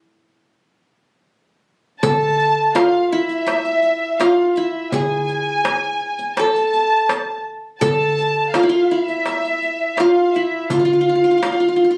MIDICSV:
0, 0, Header, 1, 5, 480
1, 0, Start_track
1, 0, Tempo, 722022
1, 1354, Time_signature, 4, 2, 24, 8
1, 7961, End_track
2, 0, Start_track
2, 0, Title_t, "Violin section"
2, 0, Program_c, 0, 48
2, 1345, Note_on_c, 0, 81, 89
2, 1803, Note_off_c, 0, 81, 0
2, 1835, Note_on_c, 0, 77, 76
2, 2058, Note_off_c, 0, 77, 0
2, 2076, Note_on_c, 0, 76, 88
2, 2769, Note_off_c, 0, 76, 0
2, 2790, Note_on_c, 0, 77, 77
2, 2978, Note_off_c, 0, 77, 0
2, 2986, Note_on_c, 0, 77, 58
2, 3028, Note_on_c, 0, 76, 72
2, 3033, Note_off_c, 0, 77, 0
2, 3266, Note_on_c, 0, 80, 87
2, 3271, Note_off_c, 0, 76, 0
2, 4231, Note_off_c, 0, 80, 0
2, 4232, Note_on_c, 0, 81, 77
2, 4927, Note_off_c, 0, 81, 0
2, 5192, Note_on_c, 0, 81, 93
2, 5647, Note_off_c, 0, 81, 0
2, 5676, Note_on_c, 0, 77, 82
2, 5912, Note_off_c, 0, 77, 0
2, 5912, Note_on_c, 0, 77, 89
2, 5992, Note_off_c, 0, 77, 0
2, 5992, Note_on_c, 0, 76, 89
2, 6634, Note_off_c, 0, 76, 0
2, 6634, Note_on_c, 0, 77, 77
2, 6874, Note_off_c, 0, 77, 0
2, 6878, Note_on_c, 0, 76, 75
2, 7114, Note_on_c, 0, 77, 80
2, 7117, Note_off_c, 0, 76, 0
2, 7961, Note_off_c, 0, 77, 0
2, 7961, End_track
3, 0, Start_track
3, 0, Title_t, "Qanun"
3, 0, Program_c, 1, 107
3, 0, Note_on_c, 1, 64, 66
3, 853, Note_off_c, 1, 64, 0
3, 1348, Note_on_c, 1, 69, 91
3, 1828, Note_on_c, 1, 65, 78
3, 2077, Note_on_c, 1, 64, 85
3, 2117, Note_off_c, 1, 65, 0
3, 2128, Note_off_c, 1, 69, 0
3, 2797, Note_on_c, 1, 65, 86
3, 2837, Note_off_c, 1, 64, 0
3, 3039, Note_on_c, 1, 64, 77
3, 3079, Note_off_c, 1, 65, 0
3, 3281, Note_on_c, 1, 68, 97
3, 3965, Note_off_c, 1, 64, 0
3, 4250, Note_on_c, 1, 69, 80
3, 4290, Note_off_c, 1, 68, 0
3, 5030, Note_off_c, 1, 69, 0
3, 5193, Note_on_c, 1, 69, 102
3, 5684, Note_on_c, 1, 65, 77
3, 5738, Note_on_c, 1, 64, 67
3, 5777, Note_off_c, 1, 65, 0
3, 5779, Note_on_c, 1, 65, 83
3, 5819, Note_off_c, 1, 64, 0
3, 5925, Note_on_c, 1, 64, 80
3, 5965, Note_off_c, 1, 65, 0
3, 5972, Note_off_c, 1, 69, 0
3, 6648, Note_on_c, 1, 65, 92
3, 6688, Note_off_c, 1, 64, 0
3, 6886, Note_on_c, 1, 64, 77
3, 6926, Note_off_c, 1, 65, 0
3, 7121, Note_on_c, 1, 65, 83
3, 7161, Note_off_c, 1, 64, 0
3, 7174, Note_off_c, 1, 65, 0
3, 7176, Note_on_c, 1, 65, 63
3, 7210, Note_off_c, 1, 65, 0
3, 7213, Note_on_c, 1, 65, 71
3, 7265, Note_off_c, 1, 65, 0
3, 7268, Note_on_c, 1, 65, 56
3, 7316, Note_off_c, 1, 65, 0
3, 7318, Note_on_c, 1, 65, 62
3, 7372, Note_off_c, 1, 65, 0
3, 7375, Note_on_c, 1, 65, 55
3, 7412, Note_off_c, 1, 65, 0
3, 7415, Note_on_c, 1, 65, 57
3, 7469, Note_off_c, 1, 65, 0
3, 7471, Note_on_c, 1, 65, 52
3, 7516, Note_off_c, 1, 65, 0
3, 7519, Note_on_c, 1, 65, 54
3, 7561, Note_off_c, 1, 65, 0
3, 7563, Note_on_c, 1, 65, 51
3, 7617, Note_off_c, 1, 65, 0
3, 7619, Note_on_c, 1, 65, 57
3, 7657, Note_off_c, 1, 65, 0
3, 7660, Note_on_c, 1, 65, 49
3, 7709, Note_off_c, 1, 65, 0
3, 7711, Note_on_c, 1, 65, 62
3, 7765, Note_off_c, 1, 65, 0
3, 7768, Note_on_c, 1, 65, 57
3, 7816, Note_off_c, 1, 65, 0
3, 7819, Note_on_c, 1, 65, 59
3, 7871, Note_off_c, 1, 65, 0
3, 7874, Note_on_c, 1, 65, 51
3, 7913, Note_off_c, 1, 65, 0
3, 7915, Note_on_c, 1, 65, 67
3, 7961, Note_off_c, 1, 65, 0
3, 7961, End_track
4, 0, Start_track
4, 0, Title_t, "Darbuka"
4, 1351, Note_on_c, 9, 64, 91
4, 1418, Note_off_c, 9, 64, 0
4, 1834, Note_on_c, 9, 63, 76
4, 1900, Note_off_c, 9, 63, 0
4, 2073, Note_on_c, 9, 62, 23
4, 2140, Note_off_c, 9, 62, 0
4, 2311, Note_on_c, 9, 63, 70
4, 2377, Note_off_c, 9, 63, 0
4, 2796, Note_on_c, 9, 63, 71
4, 2862, Note_off_c, 9, 63, 0
4, 3273, Note_on_c, 9, 64, 85
4, 3339, Note_off_c, 9, 64, 0
4, 3517, Note_on_c, 9, 62, 25
4, 3583, Note_off_c, 9, 62, 0
4, 3755, Note_on_c, 9, 63, 76
4, 3822, Note_off_c, 9, 63, 0
4, 3996, Note_on_c, 9, 62, 24
4, 4062, Note_off_c, 9, 62, 0
4, 4116, Note_on_c, 9, 62, 24
4, 4183, Note_off_c, 9, 62, 0
4, 4237, Note_on_c, 9, 63, 65
4, 4303, Note_off_c, 9, 63, 0
4, 4716, Note_on_c, 9, 63, 72
4, 4782, Note_off_c, 9, 63, 0
4, 5197, Note_on_c, 9, 64, 87
4, 5264, Note_off_c, 9, 64, 0
4, 5440, Note_on_c, 9, 62, 27
4, 5506, Note_off_c, 9, 62, 0
4, 5677, Note_on_c, 9, 63, 72
4, 5744, Note_off_c, 9, 63, 0
4, 5924, Note_on_c, 9, 62, 26
4, 5991, Note_off_c, 9, 62, 0
4, 6037, Note_on_c, 9, 62, 26
4, 6103, Note_off_c, 9, 62, 0
4, 6153, Note_on_c, 9, 63, 65
4, 6220, Note_off_c, 9, 63, 0
4, 6634, Note_on_c, 9, 63, 63
4, 6700, Note_off_c, 9, 63, 0
4, 7113, Note_on_c, 9, 64, 78
4, 7180, Note_off_c, 9, 64, 0
4, 7354, Note_on_c, 9, 62, 29
4, 7421, Note_off_c, 9, 62, 0
4, 7478, Note_on_c, 9, 62, 27
4, 7545, Note_off_c, 9, 62, 0
4, 7596, Note_on_c, 9, 63, 75
4, 7663, Note_off_c, 9, 63, 0
4, 7837, Note_on_c, 9, 62, 25
4, 7903, Note_off_c, 9, 62, 0
4, 7961, End_track
5, 0, Start_track
5, 0, Title_t, "Riq"
5, 1352, Note_on_c, 9, 54, 67
5, 1419, Note_off_c, 9, 54, 0
5, 1593, Note_on_c, 9, 54, 16
5, 1660, Note_off_c, 9, 54, 0
5, 1827, Note_on_c, 9, 54, 50
5, 1894, Note_off_c, 9, 54, 0
5, 2188, Note_on_c, 9, 54, 18
5, 2255, Note_off_c, 9, 54, 0
5, 2304, Note_on_c, 9, 54, 47
5, 2370, Note_off_c, 9, 54, 0
5, 2426, Note_on_c, 9, 54, 20
5, 2492, Note_off_c, 9, 54, 0
5, 2543, Note_on_c, 9, 54, 17
5, 2610, Note_off_c, 9, 54, 0
5, 2789, Note_on_c, 9, 54, 46
5, 2856, Note_off_c, 9, 54, 0
5, 3030, Note_on_c, 9, 54, 19
5, 3097, Note_off_c, 9, 54, 0
5, 3273, Note_on_c, 9, 54, 59
5, 3340, Note_off_c, 9, 54, 0
5, 3514, Note_on_c, 9, 54, 20
5, 3580, Note_off_c, 9, 54, 0
5, 3756, Note_on_c, 9, 54, 47
5, 3822, Note_off_c, 9, 54, 0
5, 4112, Note_on_c, 9, 54, 20
5, 4179, Note_off_c, 9, 54, 0
5, 4234, Note_on_c, 9, 54, 45
5, 4301, Note_off_c, 9, 54, 0
5, 4361, Note_on_c, 9, 54, 19
5, 4428, Note_off_c, 9, 54, 0
5, 4477, Note_on_c, 9, 54, 17
5, 4544, Note_off_c, 9, 54, 0
5, 4720, Note_on_c, 9, 54, 43
5, 4786, Note_off_c, 9, 54, 0
5, 5197, Note_on_c, 9, 54, 60
5, 5263, Note_off_c, 9, 54, 0
5, 5440, Note_on_c, 9, 54, 17
5, 5506, Note_off_c, 9, 54, 0
5, 5677, Note_on_c, 9, 54, 43
5, 5744, Note_off_c, 9, 54, 0
5, 6038, Note_on_c, 9, 54, 18
5, 6104, Note_off_c, 9, 54, 0
5, 6158, Note_on_c, 9, 54, 43
5, 6225, Note_off_c, 9, 54, 0
5, 6281, Note_on_c, 9, 54, 17
5, 6347, Note_off_c, 9, 54, 0
5, 6396, Note_on_c, 9, 54, 16
5, 6463, Note_off_c, 9, 54, 0
5, 6629, Note_on_c, 9, 54, 45
5, 6695, Note_off_c, 9, 54, 0
5, 6876, Note_on_c, 9, 54, 17
5, 6943, Note_off_c, 9, 54, 0
5, 7115, Note_on_c, 9, 54, 65
5, 7182, Note_off_c, 9, 54, 0
5, 7476, Note_on_c, 9, 54, 18
5, 7542, Note_off_c, 9, 54, 0
5, 7596, Note_on_c, 9, 54, 51
5, 7662, Note_off_c, 9, 54, 0
5, 7961, End_track
0, 0, End_of_file